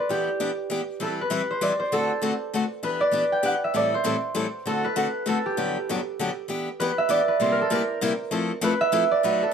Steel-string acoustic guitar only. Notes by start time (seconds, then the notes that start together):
0.09 E3 B3 D4 G4
0.40 E3 B3 D4 G4
0.70 E3 B3 D4 G4
1.00 E3 G3 C4 E4 B4
1.30 E3 G3 C4 E4 B4
1.61 E3 G3 C4 E4 B4
1.92 D3 A3 C4 F#4 A4
2.22 D3 A3 C4 F#4 A4
2.54 D3 A3 C4 F#4 A4
2.83 E3 B3 D4 G4
3.11 E3 B3 D4 G4
3.43 E3 B3 D4 G4
3.74 A2 E3 G3 C4 E4 A4
4.04 A2 E3 G3 C4 E4 A4
4.35 A2 E3 G3 C4 E4 A4
4.66 D3 A3 C4 F#4 A4
4.96 D3 A3 C4 F#4 A4
5.26 D3 A3 C4 F#4 A4
5.57 G2 D3 F#3 B3 D4 G4
5.89 G2 D3 F#3 B3 D4 G4
6.19 G2 D3 F#3 B3 D4 G4
6.48 E3 B3 D4 G4
6.80 E3 B3 D4 G4
7.09 E3 B3 D4 G4
7.40 C3 G3 A#3 E4 G4
7.70 C3 G3 A#3 E4 G4
8.01 C3 G3 A#3 E4 G4
8.31 F3 A3 C4 E4 A4
8.61 F3 A3 C4 E4 A4
8.92 F3 A3 C4 E4 A4
9.23 B2 F#3 A3 D#4 F#4